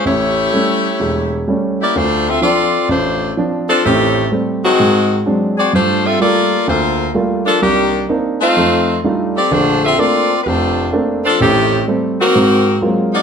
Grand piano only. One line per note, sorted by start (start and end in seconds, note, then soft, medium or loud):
0.05 0.46 A1 medium
0.53 0.87 G3 soft
0.53 0.86 A3 soft
0.53 0.87 C#4 soft
1.00 1.41 E1 medium
1.48 1.81 G3 soft
1.48 1.81 A3 soft
1.48 1.81 C#4 soft
1.96 2.36 D2 medium
2.41 2.75 F3 soft
2.41 2.75 C4 soft
2.41 2.75 D4 soft
2.89 3.30 A1 medium
3.37 3.70 F3 soft
3.37 3.70 C4 soft
3.37 3.71 D4 medium
3.85 4.25 A1 medium
3.85 4.25 A2 medium
4.32 4.64 G3 soft
4.32 4.65 A3 soft
4.32 4.65 C4 soft
4.80 5.20 G#2 medium
5.26 5.59 F#3 soft
5.26 5.59 G#3 soft
5.26 5.59 C4 soft
5.26 5.59 D4 medium
5.73 6.14 G2 medium
6.20 6.53 G3 soft
6.20 6.53 A3 soft
6.20 6.53 A#3 soft
6.20 6.53 F4 soft
6.68 7.08 D2 medium
7.15 7.48 G3 soft
7.15 7.48 A3 soft
7.15 7.48 A#3 soft
7.15 7.48 F4 soft
7.62 8.03 C2 medium
8.09 8.42 A#3 soft
8.09 8.42 C4 soft
8.09 8.42 D4 soft
8.09 8.42 D#4 medium
8.57 8.97 F2 medium
8.57 8.97 A3 medium
9.04 9.37 G3 soft
9.04 9.37 A3 soft
9.04 9.37 D4 soft
9.04 9.37 D#4 soft
9.04 9.37 F4 medium
9.51 9.92 A#1 medium
9.51 9.92 D3 medium
9.98 10.31 A3 soft
9.98 10.31 A#3 soft
9.98 10.31 C4 soft
9.98 10.31 D4 soft
10.46 10.86 F1 medium
10.92 11.25 A3 soft
10.92 11.26 A#3 soft
10.92 11.26 C4 soft
10.92 11.26 D4 medium
11.40 11.81 A1 medium
11.40 11.81 A2 medium
11.88 12.20 G3 soft
11.88 12.21 A3 soft
11.88 12.21 C4 medium
12.35 12.75 G#2 medium
12.35 12.75 C4 medium
12.82 13.14 F#3 soft
12.82 13.14 G#3 soft
12.82 13.14 A#3 soft
12.82 13.15 C4 soft
12.82 13.15 F4 medium